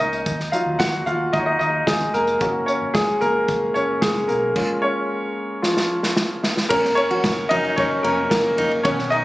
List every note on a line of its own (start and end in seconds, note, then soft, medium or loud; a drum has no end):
0.00 0.22 C#2 medium
0.00 0.28 A#3 medium
0.00 0.29 C#4 medium
0.00 0.50 D#4 medium
0.00 0.29 F4 medium
0.00 0.28 A#4 medium
0.00 0.29 C#5 medium
0.00 0.54 D#5 medium
0.00 0.29 F5 medium
0.00 closed hi-hat medium
0.13 closed hi-hat medium
0.26 0.48 D#2 medium
0.26 kick loud
0.26 closed hi-hat medium
0.40 snare soft
0.52 2.37 F#3 soft
0.52 1.33 D#4 soft
0.52 0.78 F4 medium
0.52 0.80 F5 medium
0.52 closed hi-hat medium
0.66 0.77 D#2 medium
0.79 1.02 D#2 medium
0.79 1.05 F#4 medium
0.79 1.07 F#5 medium
0.79 kick loud
0.79 snare loud
0.79 closed hi-hat medium
1.06 1.29 D#2 medium
1.06 1.14 F4 medium
1.06 1.12 F5 medium
1.06 closed hi-hat medium
1.06 floor tom medium
1.33 1.56 D#2 loud
1.33 1.41 D#4 medium
1.33 1.40 D#5 medium
1.33 kick loud
1.33 closed hi-hat medium
1.39 1.46 C#5 medium
1.46 1.60 D#4 medium
1.46 1.58 D#5 medium
1.59 1.83 D#2 medium
1.59 1.86 D#4 medium
1.59 1.88 D#5 medium
1.59 closed hi-hat medium
1.87 2.09 D#2 medium
1.87 2.13 G#3 medium
1.87 2.15 G#4 medium
1.87 kick loud
1.87 snare loud
1.87 closed hi-hat medium
2.00 closed hi-hat soft
2.00 floor tom medium
2.14 2.36 F1 medium
2.14 2.39 A#3 medium
2.14 2.69 A#4 medium
2.14 closed hi-hat medium
2.27 closed hi-hat medium
2.40 2.63 F#1 loud
2.40 2.76 A#3 medium
2.40 2.66 C#4 soft
2.40 2.77 F#4 medium
2.40 kick loud
2.40 closed hi-hat medium
2.66 2.93 C#4 medium
2.66 2.95 C#5 medium
2.66 closed hi-hat medium
2.81 2.92 F#1 medium
2.94 3.17 F#1 medium
2.94 3.20 G#3 medium
2.94 3.22 G#4 medium
2.94 kick loud
2.94 snare loud
2.94 closed hi-hat medium
3.21 3.44 F#1 medium
3.21 3.72 A#3 medium
3.21 3.71 A#4 loud
3.21 closed hi-hat medium
3.21 floor tom medium
3.48 3.70 F#1 loud
3.48 kick loud
3.48 closed hi-hat medium
3.74 3.98 F#1 medium
3.74 4.01 C#4 medium
3.74 4.02 C#5 medium
3.74 closed hi-hat medium
4.01 4.24 F#1 medium
4.01 4.28 G#3 medium
4.01 4.29 G#4 medium
4.01 kick loud
4.01 snare loud
4.01 closed hi-hat medium
4.15 closed hi-hat soft
4.15 floor tom medium
4.28 4.51 B1 medium
4.28 4.79 A#3 medium
4.28 4.78 A#4 medium
4.28 closed hi-hat medium
4.55 4.91 G#3 medium
4.55 4.82 C#4 soft
4.55 4.92 F4 medium
4.55 kick loud
4.55 crash medium
4.82 5.59 C#4 medium
4.82 5.65 C#5 medium
5.62 6.40 F3 medium
5.62 6.39 F4 medium
5.62 snare medium
5.77 snare soft
6.03 snare medium
6.17 snare medium
6.44 snare medium
6.57 snare medium
6.69 7.15 F#1 medium
6.69 6.96 A#3 medium
6.69 6.83 C#4 loud
6.69 6.95 A#4 medium
6.69 kick loud
6.69 crash loud
6.85 snare soft
6.95 7.47 C#4 medium
6.95 7.52 C#5 loud
6.95 ride medium
7.11 7.23 F#4 medium
7.24 7.46 F#1 loud
7.24 kick loud
7.24 snare loud
7.24 ride medium
7.49 7.73 F#1 medium
7.49 8.80 F#3 medium
7.49 8.03 A#3 medium
7.49 7.77 C#4 medium
7.49 7.89 D#4 medium
7.49 7.76 D#4 medium
7.49 7.78 D#5 loud
7.49 ride medium
7.65 ride soft
7.76 8.00 F#1 loud
7.76 8.03 C#4 medium
7.76 8.05 C#5 medium
7.76 kick loud
7.76 ride medium
8.03 8.26 F1 loud
8.03 8.29 A#3 medium
8.03 8.17 C#4 medium
8.03 8.28 A#4 medium
8.03 ride medium
8.30 8.53 F#1 loud
8.30 8.69 A#3 medium
8.30 8.68 A#4 medium
8.30 kick loud
8.30 snare loud
8.30 ride medium
8.58 8.80 F#1 loud
8.58 8.71 D#4 medium
8.58 floor tom medium
8.58 ride medium
8.71 ride soft
8.83 9.24 B1 loud
8.83 9.20 D#3 medium
8.83 9.20 B3 medium
8.83 9.10 C#4 medium
8.83 8.98 C#4 loud
8.83 9.12 C#5 medium
8.83 kick loud
8.83 ride medium
8.99 snare soft
9.10 9.24 D#4 medium
9.10 9.24 D#5 loud
9.10 ride medium